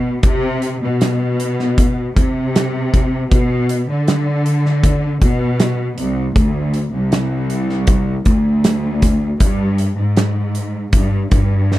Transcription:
Already playing: cello section B2
0.23 cello section C3, kick, closed hi-hat
0.62 closed hi-hat
0.81 cello section B2
1.01 snare, closed hi-hat
1.40 closed hi-hat
1.60 snare
1.78 kick, closed hi-hat
2.17 cello section C3, kick, closed hi-hat
2.56 snare, closed hi-hat
2.94 kick, closed hi-hat
3.32 cello section B2, kick, closed hi-hat
3.69 closed hi-hat
3.89 cello section D3
4.08 snare, closed hi-hat
4.46 closed hi-hat
4.66 snare
4.84 kick, closed hi-hat
5.22 cello section B2, kick, closed hi-hat
5.60 snare, closed hi-hat
5.98 cello section C2, closed hi-hat
6.36 cello section D2, kick, closed hi-hat
6.74 closed hi-hat
6.93 cello section C2
7.12 snare, closed hi-hat
7.50 closed hi-hat
7.70 snare
7.87 kick, closed hi-hat
8.25 cello section D2, kick, closed hi-hat
8.64 snare, closed hi-hat
9.02 kick, closed hi-hat
9.40 cello section G2, kick, closed hi-hat
9.78 closed hi-hat
9.98 cello section G#2
10.17 snare, closed hi-hat
10.55 closed hi-hat
10.93 cello section G2, kick, closed hi-hat
11.31 cello section G2, kick, closed hi-hat
11.72 snare

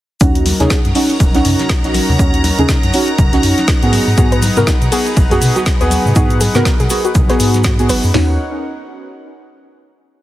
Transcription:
0.21 analog synth bass D#2, synth stab C#4 D#4 F#4, analog synth pad D#4 A#4 C#5 F#5, string machine A#5, kick, closed hi-hat, shaker
0.35 closed hi-hat
0.46 open hi-hat, high conga, shaker
0.60 analog synth bass D#2, synth stab C#4 D#4 G#4, snare, closed hi-hat, low conga
0.70 kick, snare, closed hi-hat, shaker
0.85 analog synth bass F#2, closed hi-hat, high conga
0.95 synth stab C#4 D#4 F#4, open hi-hat
1.10 closed hi-hat
1.20 analog synth bass D#1, kick, closed hi-hat, high conga, shaker
1.34 analog synth bass C#2, synth stab C#4 D#4 F#4, snare, closed hi-hat
1.45 analog synth bass F#2, open hi-hat, low conga, shaker
1.59 snare, closed hi-hat, high conga
1.69 kick, snare, closed hi-hat, shaker
1.84 analog synth bass A#1, synth stab C#4 D#4 F#4, snare, closed hi-hat
1.94 open hi-hat, high conga, shaker
2.09 analog synth bass D#2, low conga
2.19 analog synth bass D#2, synth stab C#4 D#4 F#4, kick, closed hi-hat, shaker
2.34 closed hi-hat
2.44 open hi-hat, high conga, shaker
2.58 analog synth bass D#2, synth stab C#4 D#4 G#4, closed hi-hat, low conga
2.69 kick, snare, closed hi-hat, shaker
2.83 analog synth bass F#2, closed hi-hat, high conga
2.93 synth stab C#4 D#4 F#4, open hi-hat, shaker
3.08 closed hi-hat
3.18 analog synth bass D#1, kick, closed hi-hat, high conga, low conga, shaker
3.33 analog synth bass C#2, synth stab C#4 D#4 F#4, snare, closed hi-hat
3.43 analog synth bass F#2, open hi-hat, shaker
3.57 snare, closed hi-hat, high conga
3.68 kick, snare, closed hi-hat, shaker
3.82 analog synth bass G#2, synth stab B3 F#4 G#4, closed hi-hat
3.92 analog synth pad G#4 B4, open hi-hat, high conga, shaker
4.07 analog synth bass G#2
4.17 analog synth bass G#2, synth stab B3 F#4 G#4, kick, closed hi-hat, cabasa, shaker
4.32 synth arpeggio sound B4, closed hi-hat, cabasa
4.42 open hi-hat, high conga, cabasa, shaker
4.57 analog synth bass G#2, synth stab B3 F#4 A#4, snare, closed hi-hat, low conga, cabasa
4.67 synth arpeggio sound D#4, kick, snare, closed hi-hat, cabasa, shaker
4.81 analog synth bass B2, closed hi-hat, high conga, cabasa
4.92 synth stab B3 F#4 G#4, synth arpeggio sound G#4, open hi-hat, cabasa
5.07 closed hi-hat, cabasa
5.16 analog synth bass G#1, kick, closed hi-hat, high conga, cabasa, shaker
5.31 analog synth bass F#2, synth stab B3 F#4 G#4, synth arpeggio sound G#4, snare, closed hi-hat, cabasa
5.41 analog synth bass B2, open hi-hat, low conga, cabasa, shaker
5.56 synth arpeggio sound F#4, snare, closed hi-hat, high conga, cabasa
5.66 kick, snare, closed hi-hat, cabasa, shaker
5.81 analog synth bass D#2, synth stab B3 F#4 G#4, synth arpeggio sound B4, snare, closed hi-hat, cabasa
5.90 open hi-hat, high conga, cabasa, shaker
6.05 analog synth bass G#2, low conga, cabasa
6.15 analog synth bass G#2, synth stab B3 F#4 G#4, synth arpeggio sound D#4, kick, closed hi-hat, cabasa, shaker
6.30 closed hi-hat, cabasa
6.41 synth arpeggio sound G#4, open hi-hat, high conga, cabasa, shaker
6.55 analog synth bass G#2, synth stab B3 F#4 A#4, snare, closed hi-hat, low conga, cabasa
6.65 kick, snare, closed hi-hat, cabasa, shaker
6.80 analog synth bass B2, synth arpeggio sound G#4, closed hi-hat, high conga, cabasa
6.90 synth stab B3 F#4 G#4, open hi-hat, cabasa, shaker
7.05 synth arpeggio sound F#4, closed hi-hat, cabasa
7.15 kick, closed hi-hat, high conga, low conga, cabasa, shaker
7.29 synth stab B3 F#4 G#4, synth arpeggio sound B4, snare, closed hi-hat, cabasa
7.40 analog synth bass G#2, open hi-hat, cabasa, shaker
7.54 snare, closed hi-hat, high conga, cabasa
7.64 synth arpeggio sound F#4, kick, snare, closed hi-hat, cabasa, shaker
7.79 synth stab B3 F#4 G#4, closed hi-hat, cabasa
7.89 analog synth bass G#1, synth arpeggio sound B4, open hi-hat, high conga, cabasa, shaker
8.03 analog synth bass F#2, cabasa
8.14 analog synth bass D#2, synth stab C#4 D#4 F#4, synth arpeggio sound C#4, analog synth pad D#4 A#4 C#5 F#5, snare, floor tom, open hi-hat

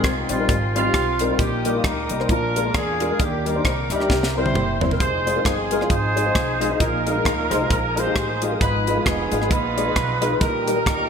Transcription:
Already playing: upright piano G#2, horn section C4 D#4, string section A#4 G5 G#5 C6
0.04 upright bass C2, horn section F4, kick, cross-stick, closed hi-hat
0.29 upright bass A#1, upright piano G3 C4 D#4 G4, horn section C4 F4, closed hi-hat
0.39 upright piano G3 C4 D#4 A#4
0.49 upright bass G#1, kick, closed hi-hat
0.75 upright piano G3 C4 D#4 G4, horn section C4 F4, closed hi-hat
0.84 upright piano G3 C4 D#4 G4
0.94 upright bass B1, kick, cross-stick, closed hi-hat
1.19 upright piano G3 C4 D#4 A#4, closed hi-hat
1.30 upright piano G3 C4 D#4 A#4
1.38 upright bass A#1, upright piano A#2, horn section A#3 D#4 G4, string section A#5 D#6, kick, closed hi-hat
1.65 upright piano G3 A#3 D#4 A#4, closed hi-hat
1.74 upright piano G3 A#3 D#4 F4
1.84 upright bass D2, horn section D#4 G4 A#4, kick, cross-stick, closed hi-hat
2.09 upright bass C2, upright piano G3 A#3 D#4 A#4, closed hi-hat
2.20 upright piano G3 A#3 D#4 C5, cross-stick
2.29 upright bass A#1, upright piano A#2, horn section D4 F4 A#4, string section F5 G#5 D6, kick, closed hi-hat
2.56 upright piano G#3 D4 F4 A#4, closed hi-hat
2.65 upright piano G#3 D4 F4 A#4
2.74 upright bass E2, horn section D4 F4 G#4, kick, cross-stick, closed hi-hat
3.00 upright piano G#3 D4 F4 A#4, closed hi-hat
3.11 upright piano G#3 D4 F4 A#4
3.19 upright bass D#2, upright piano D#3, horn section A#3 D4 G4, string section D5 G5 A#5 D6, kick, closed hi-hat
3.45 upright piano G3 D4 D#4 A#4, horn section D4 G4 A#4, closed hi-hat
3.55 upright piano G3 D4 D#4 C5
3.65 upright bass C2, kick, cross-stick, closed hi-hat
3.90 upright bass D2, upright piano G3 D4 D#4 G4, horn section E4 G4 A#4, cross-stick, closed hi-hat
4.00 upright piano G3 D4 D#4 G4, cross-stick
4.10 upright bass C2, upright piano C3, string section E5 C6, kick, snare
4.23 snare
4.36 upright piano G3 C4 E4 A#4, horn section E4 G4 C5
4.46 upright piano G3 C4 E4 G4, high tom
4.54 upright bass F#1, mid tom
4.81 upright piano G3 C4 E4 C5, floor tom
4.91 upright piano G3 C4 E4 A#4, floor tom
5.00 upright bass F1, tonewheel organ F3 C4 D#4 G#4, horn section D#4 G#4 C5, string section F5 G#5 D#6, kick, closed hi-hat
5.26 upright piano G#3 D#4 F4 C5, closed hi-hat
5.36 upright piano G#3 D#4 F4 A#4
5.45 upright bass G1, horn section C4 D#4 G#4, kick, cross-stick, closed hi-hat
5.71 upright piano G#3 D#4 F4 A#4, closed hi-hat
5.81 upright piano G#3 D#4 F4 C5, cross-stick
5.90 upright bass G#1, horn section D#4 G#4 C5, kick, closed hi-hat
6.16 upright piano G#3 D#4 F4 C5, closed hi-hat
6.26 upright piano G#3 D#4 F4 C5
6.35 upright bass B1, kick, cross-stick, closed hi-hat
6.60 upright piano G#3 D#4 F4 D#5, closed hi-hat
6.70 upright piano G#3 D#4 F4 D#5
6.80 upright bass A#1, upright piano A#2, tonewheel organ F3 A#3 D#4 G#4, horn section D#4 F4 A#4, string section A#5 D#6, kick, closed hi-hat
7.07 upright piano G#3 D#4 F4 A#4, closed hi-hat
7.15 upright piano G#3 D#4 F4 A#4
7.25 upright bass D2, kick, cross-stick, closed hi-hat
7.51 upright bass C2, upright piano G#3 D#4 F4 C5, cross-stick, closed hi-hat
7.61 upright piano G#3 D#4 F4 C5
7.70 upright bass A#1, kick, closed hi-hat
7.96 upright piano G#3 D#4 F4 A#4, horn section D#4 G#4 C5, closed hi-hat
8.06 upright piano G#3 D#4 F4 G4
8.15 upright bass A1, kick, cross-stick, closed hi-hat
8.42 upright piano G#3 D#4 F4 G4, closed hi-hat
8.51 upright piano G#3 D#4 F4 A#4
8.60 upright bass G#1, upright piano G#2, tonewheel organ F3 B3 D#4 G#4, horn section D#4 F4 B4, string section F5 B5, kick, closed hi-hat
8.87 upright piano G#3 D#4 F4 B4, closed hi-hat
8.97 upright piano G#3 D#4 F4 B4
9.05 upright bass F1, horn section B3 F4 G#4, kick, cross-stick, closed hi-hat
9.32 upright bass G#1, upright piano G#3 D#4 F4 B4, closed hi-hat
9.41 upright piano G#3 D#4 F4 B4, cross-stick
9.50 upright bass A#1, horn section D#4 F4 B4, kick, closed hi-hat
9.77 upright piano G#3 D#4 F4 D5, closed hi-hat
9.86 upright piano G#3 D#4 F4 B4
9.96 upright bass B1, kick, cross-stick, closed hi-hat
10.21 upright piano G#3 D#4 F4 B4, closed hi-hat
10.30 upright piano G#3 D#4 F4 B4
10.40 upright bass A#1, upright piano A#2, tonewheel organ D#3 G3 A#3 F#4, horn section D#4 G4 A#4, string section D#5 G5 A#5, kick, closed hi-hat
10.46 tonewheel organ G4
10.67 upright piano G3 A#3 D#4 A#4, closed hi-hat
10.76 upright piano G3 A#3 D#4 A#4
10.86 upright bass D2, kick, cross-stick, closed hi-hat

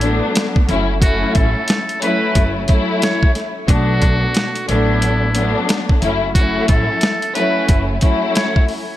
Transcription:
Already playing: upright bass A1, muted trumpet E4
0.01 string section F#3 A3 B3 D4, closed hi-hat
0.35 snare, closed hi-hat
0.56 kick
0.68 upright bass F#1, string section F#3 A3 C#4 E4, closed hi-hat
1.02 string section F#3 A3 C#4 E4, muted trumpet F#4, kick, closed hi-hat
1.35 upright bass A1, muted trumpet A4, kick, closed hi-hat
1.68 snare, closed hi-hat
1.89 closed hi-hat
2.01 string section F#3 A3 C#4 E4, muted trumpet B4, closed hi-hat
2.35 upright bass F#1, kick, closed hi-hat
2.68 string section F#3 A3 C#4 E4, kick, closed hi-hat
3.02 muted trumpet C#5, snare, closed hi-hat
3.23 kick
3.35 snare, closed hi-hat
3.68 upright bass B1, string section F#3 A3 B3 D4, muted trumpet F#4, kick, closed hi-hat
4.02 kick, closed hi-hat
4.34 snare, closed hi-hat
4.55 closed hi-hat
4.68 upright bass A1, string section F#3 A3 B3 D4, muted trumpet E4, closed hi-hat
5.02 closed hi-hat
5.34 string section F#3 A3 B3 D4, closed hi-hat
5.69 snare, closed hi-hat
5.89 kick
6.02 upright bass F#1, string section F#3 A3 C#4 E4, closed hi-hat
6.35 string section F#3 A3 C#4 E4, muted trumpet F#4, kick, closed hi-hat
6.68 upright bass A1, muted trumpet A4, kick, closed hi-hat
7.01 snare, closed hi-hat
7.22 closed hi-hat
7.35 string section F#3 A3 C#4 E4, muted trumpet B4, closed hi-hat
7.69 upright bass F#1, kick, closed hi-hat
8.01 string section F#3 A3 C#4 E4, kick, closed hi-hat
8.35 muted trumpet C#5, snare, closed hi-hat
8.56 kick
8.68 open hi-hat

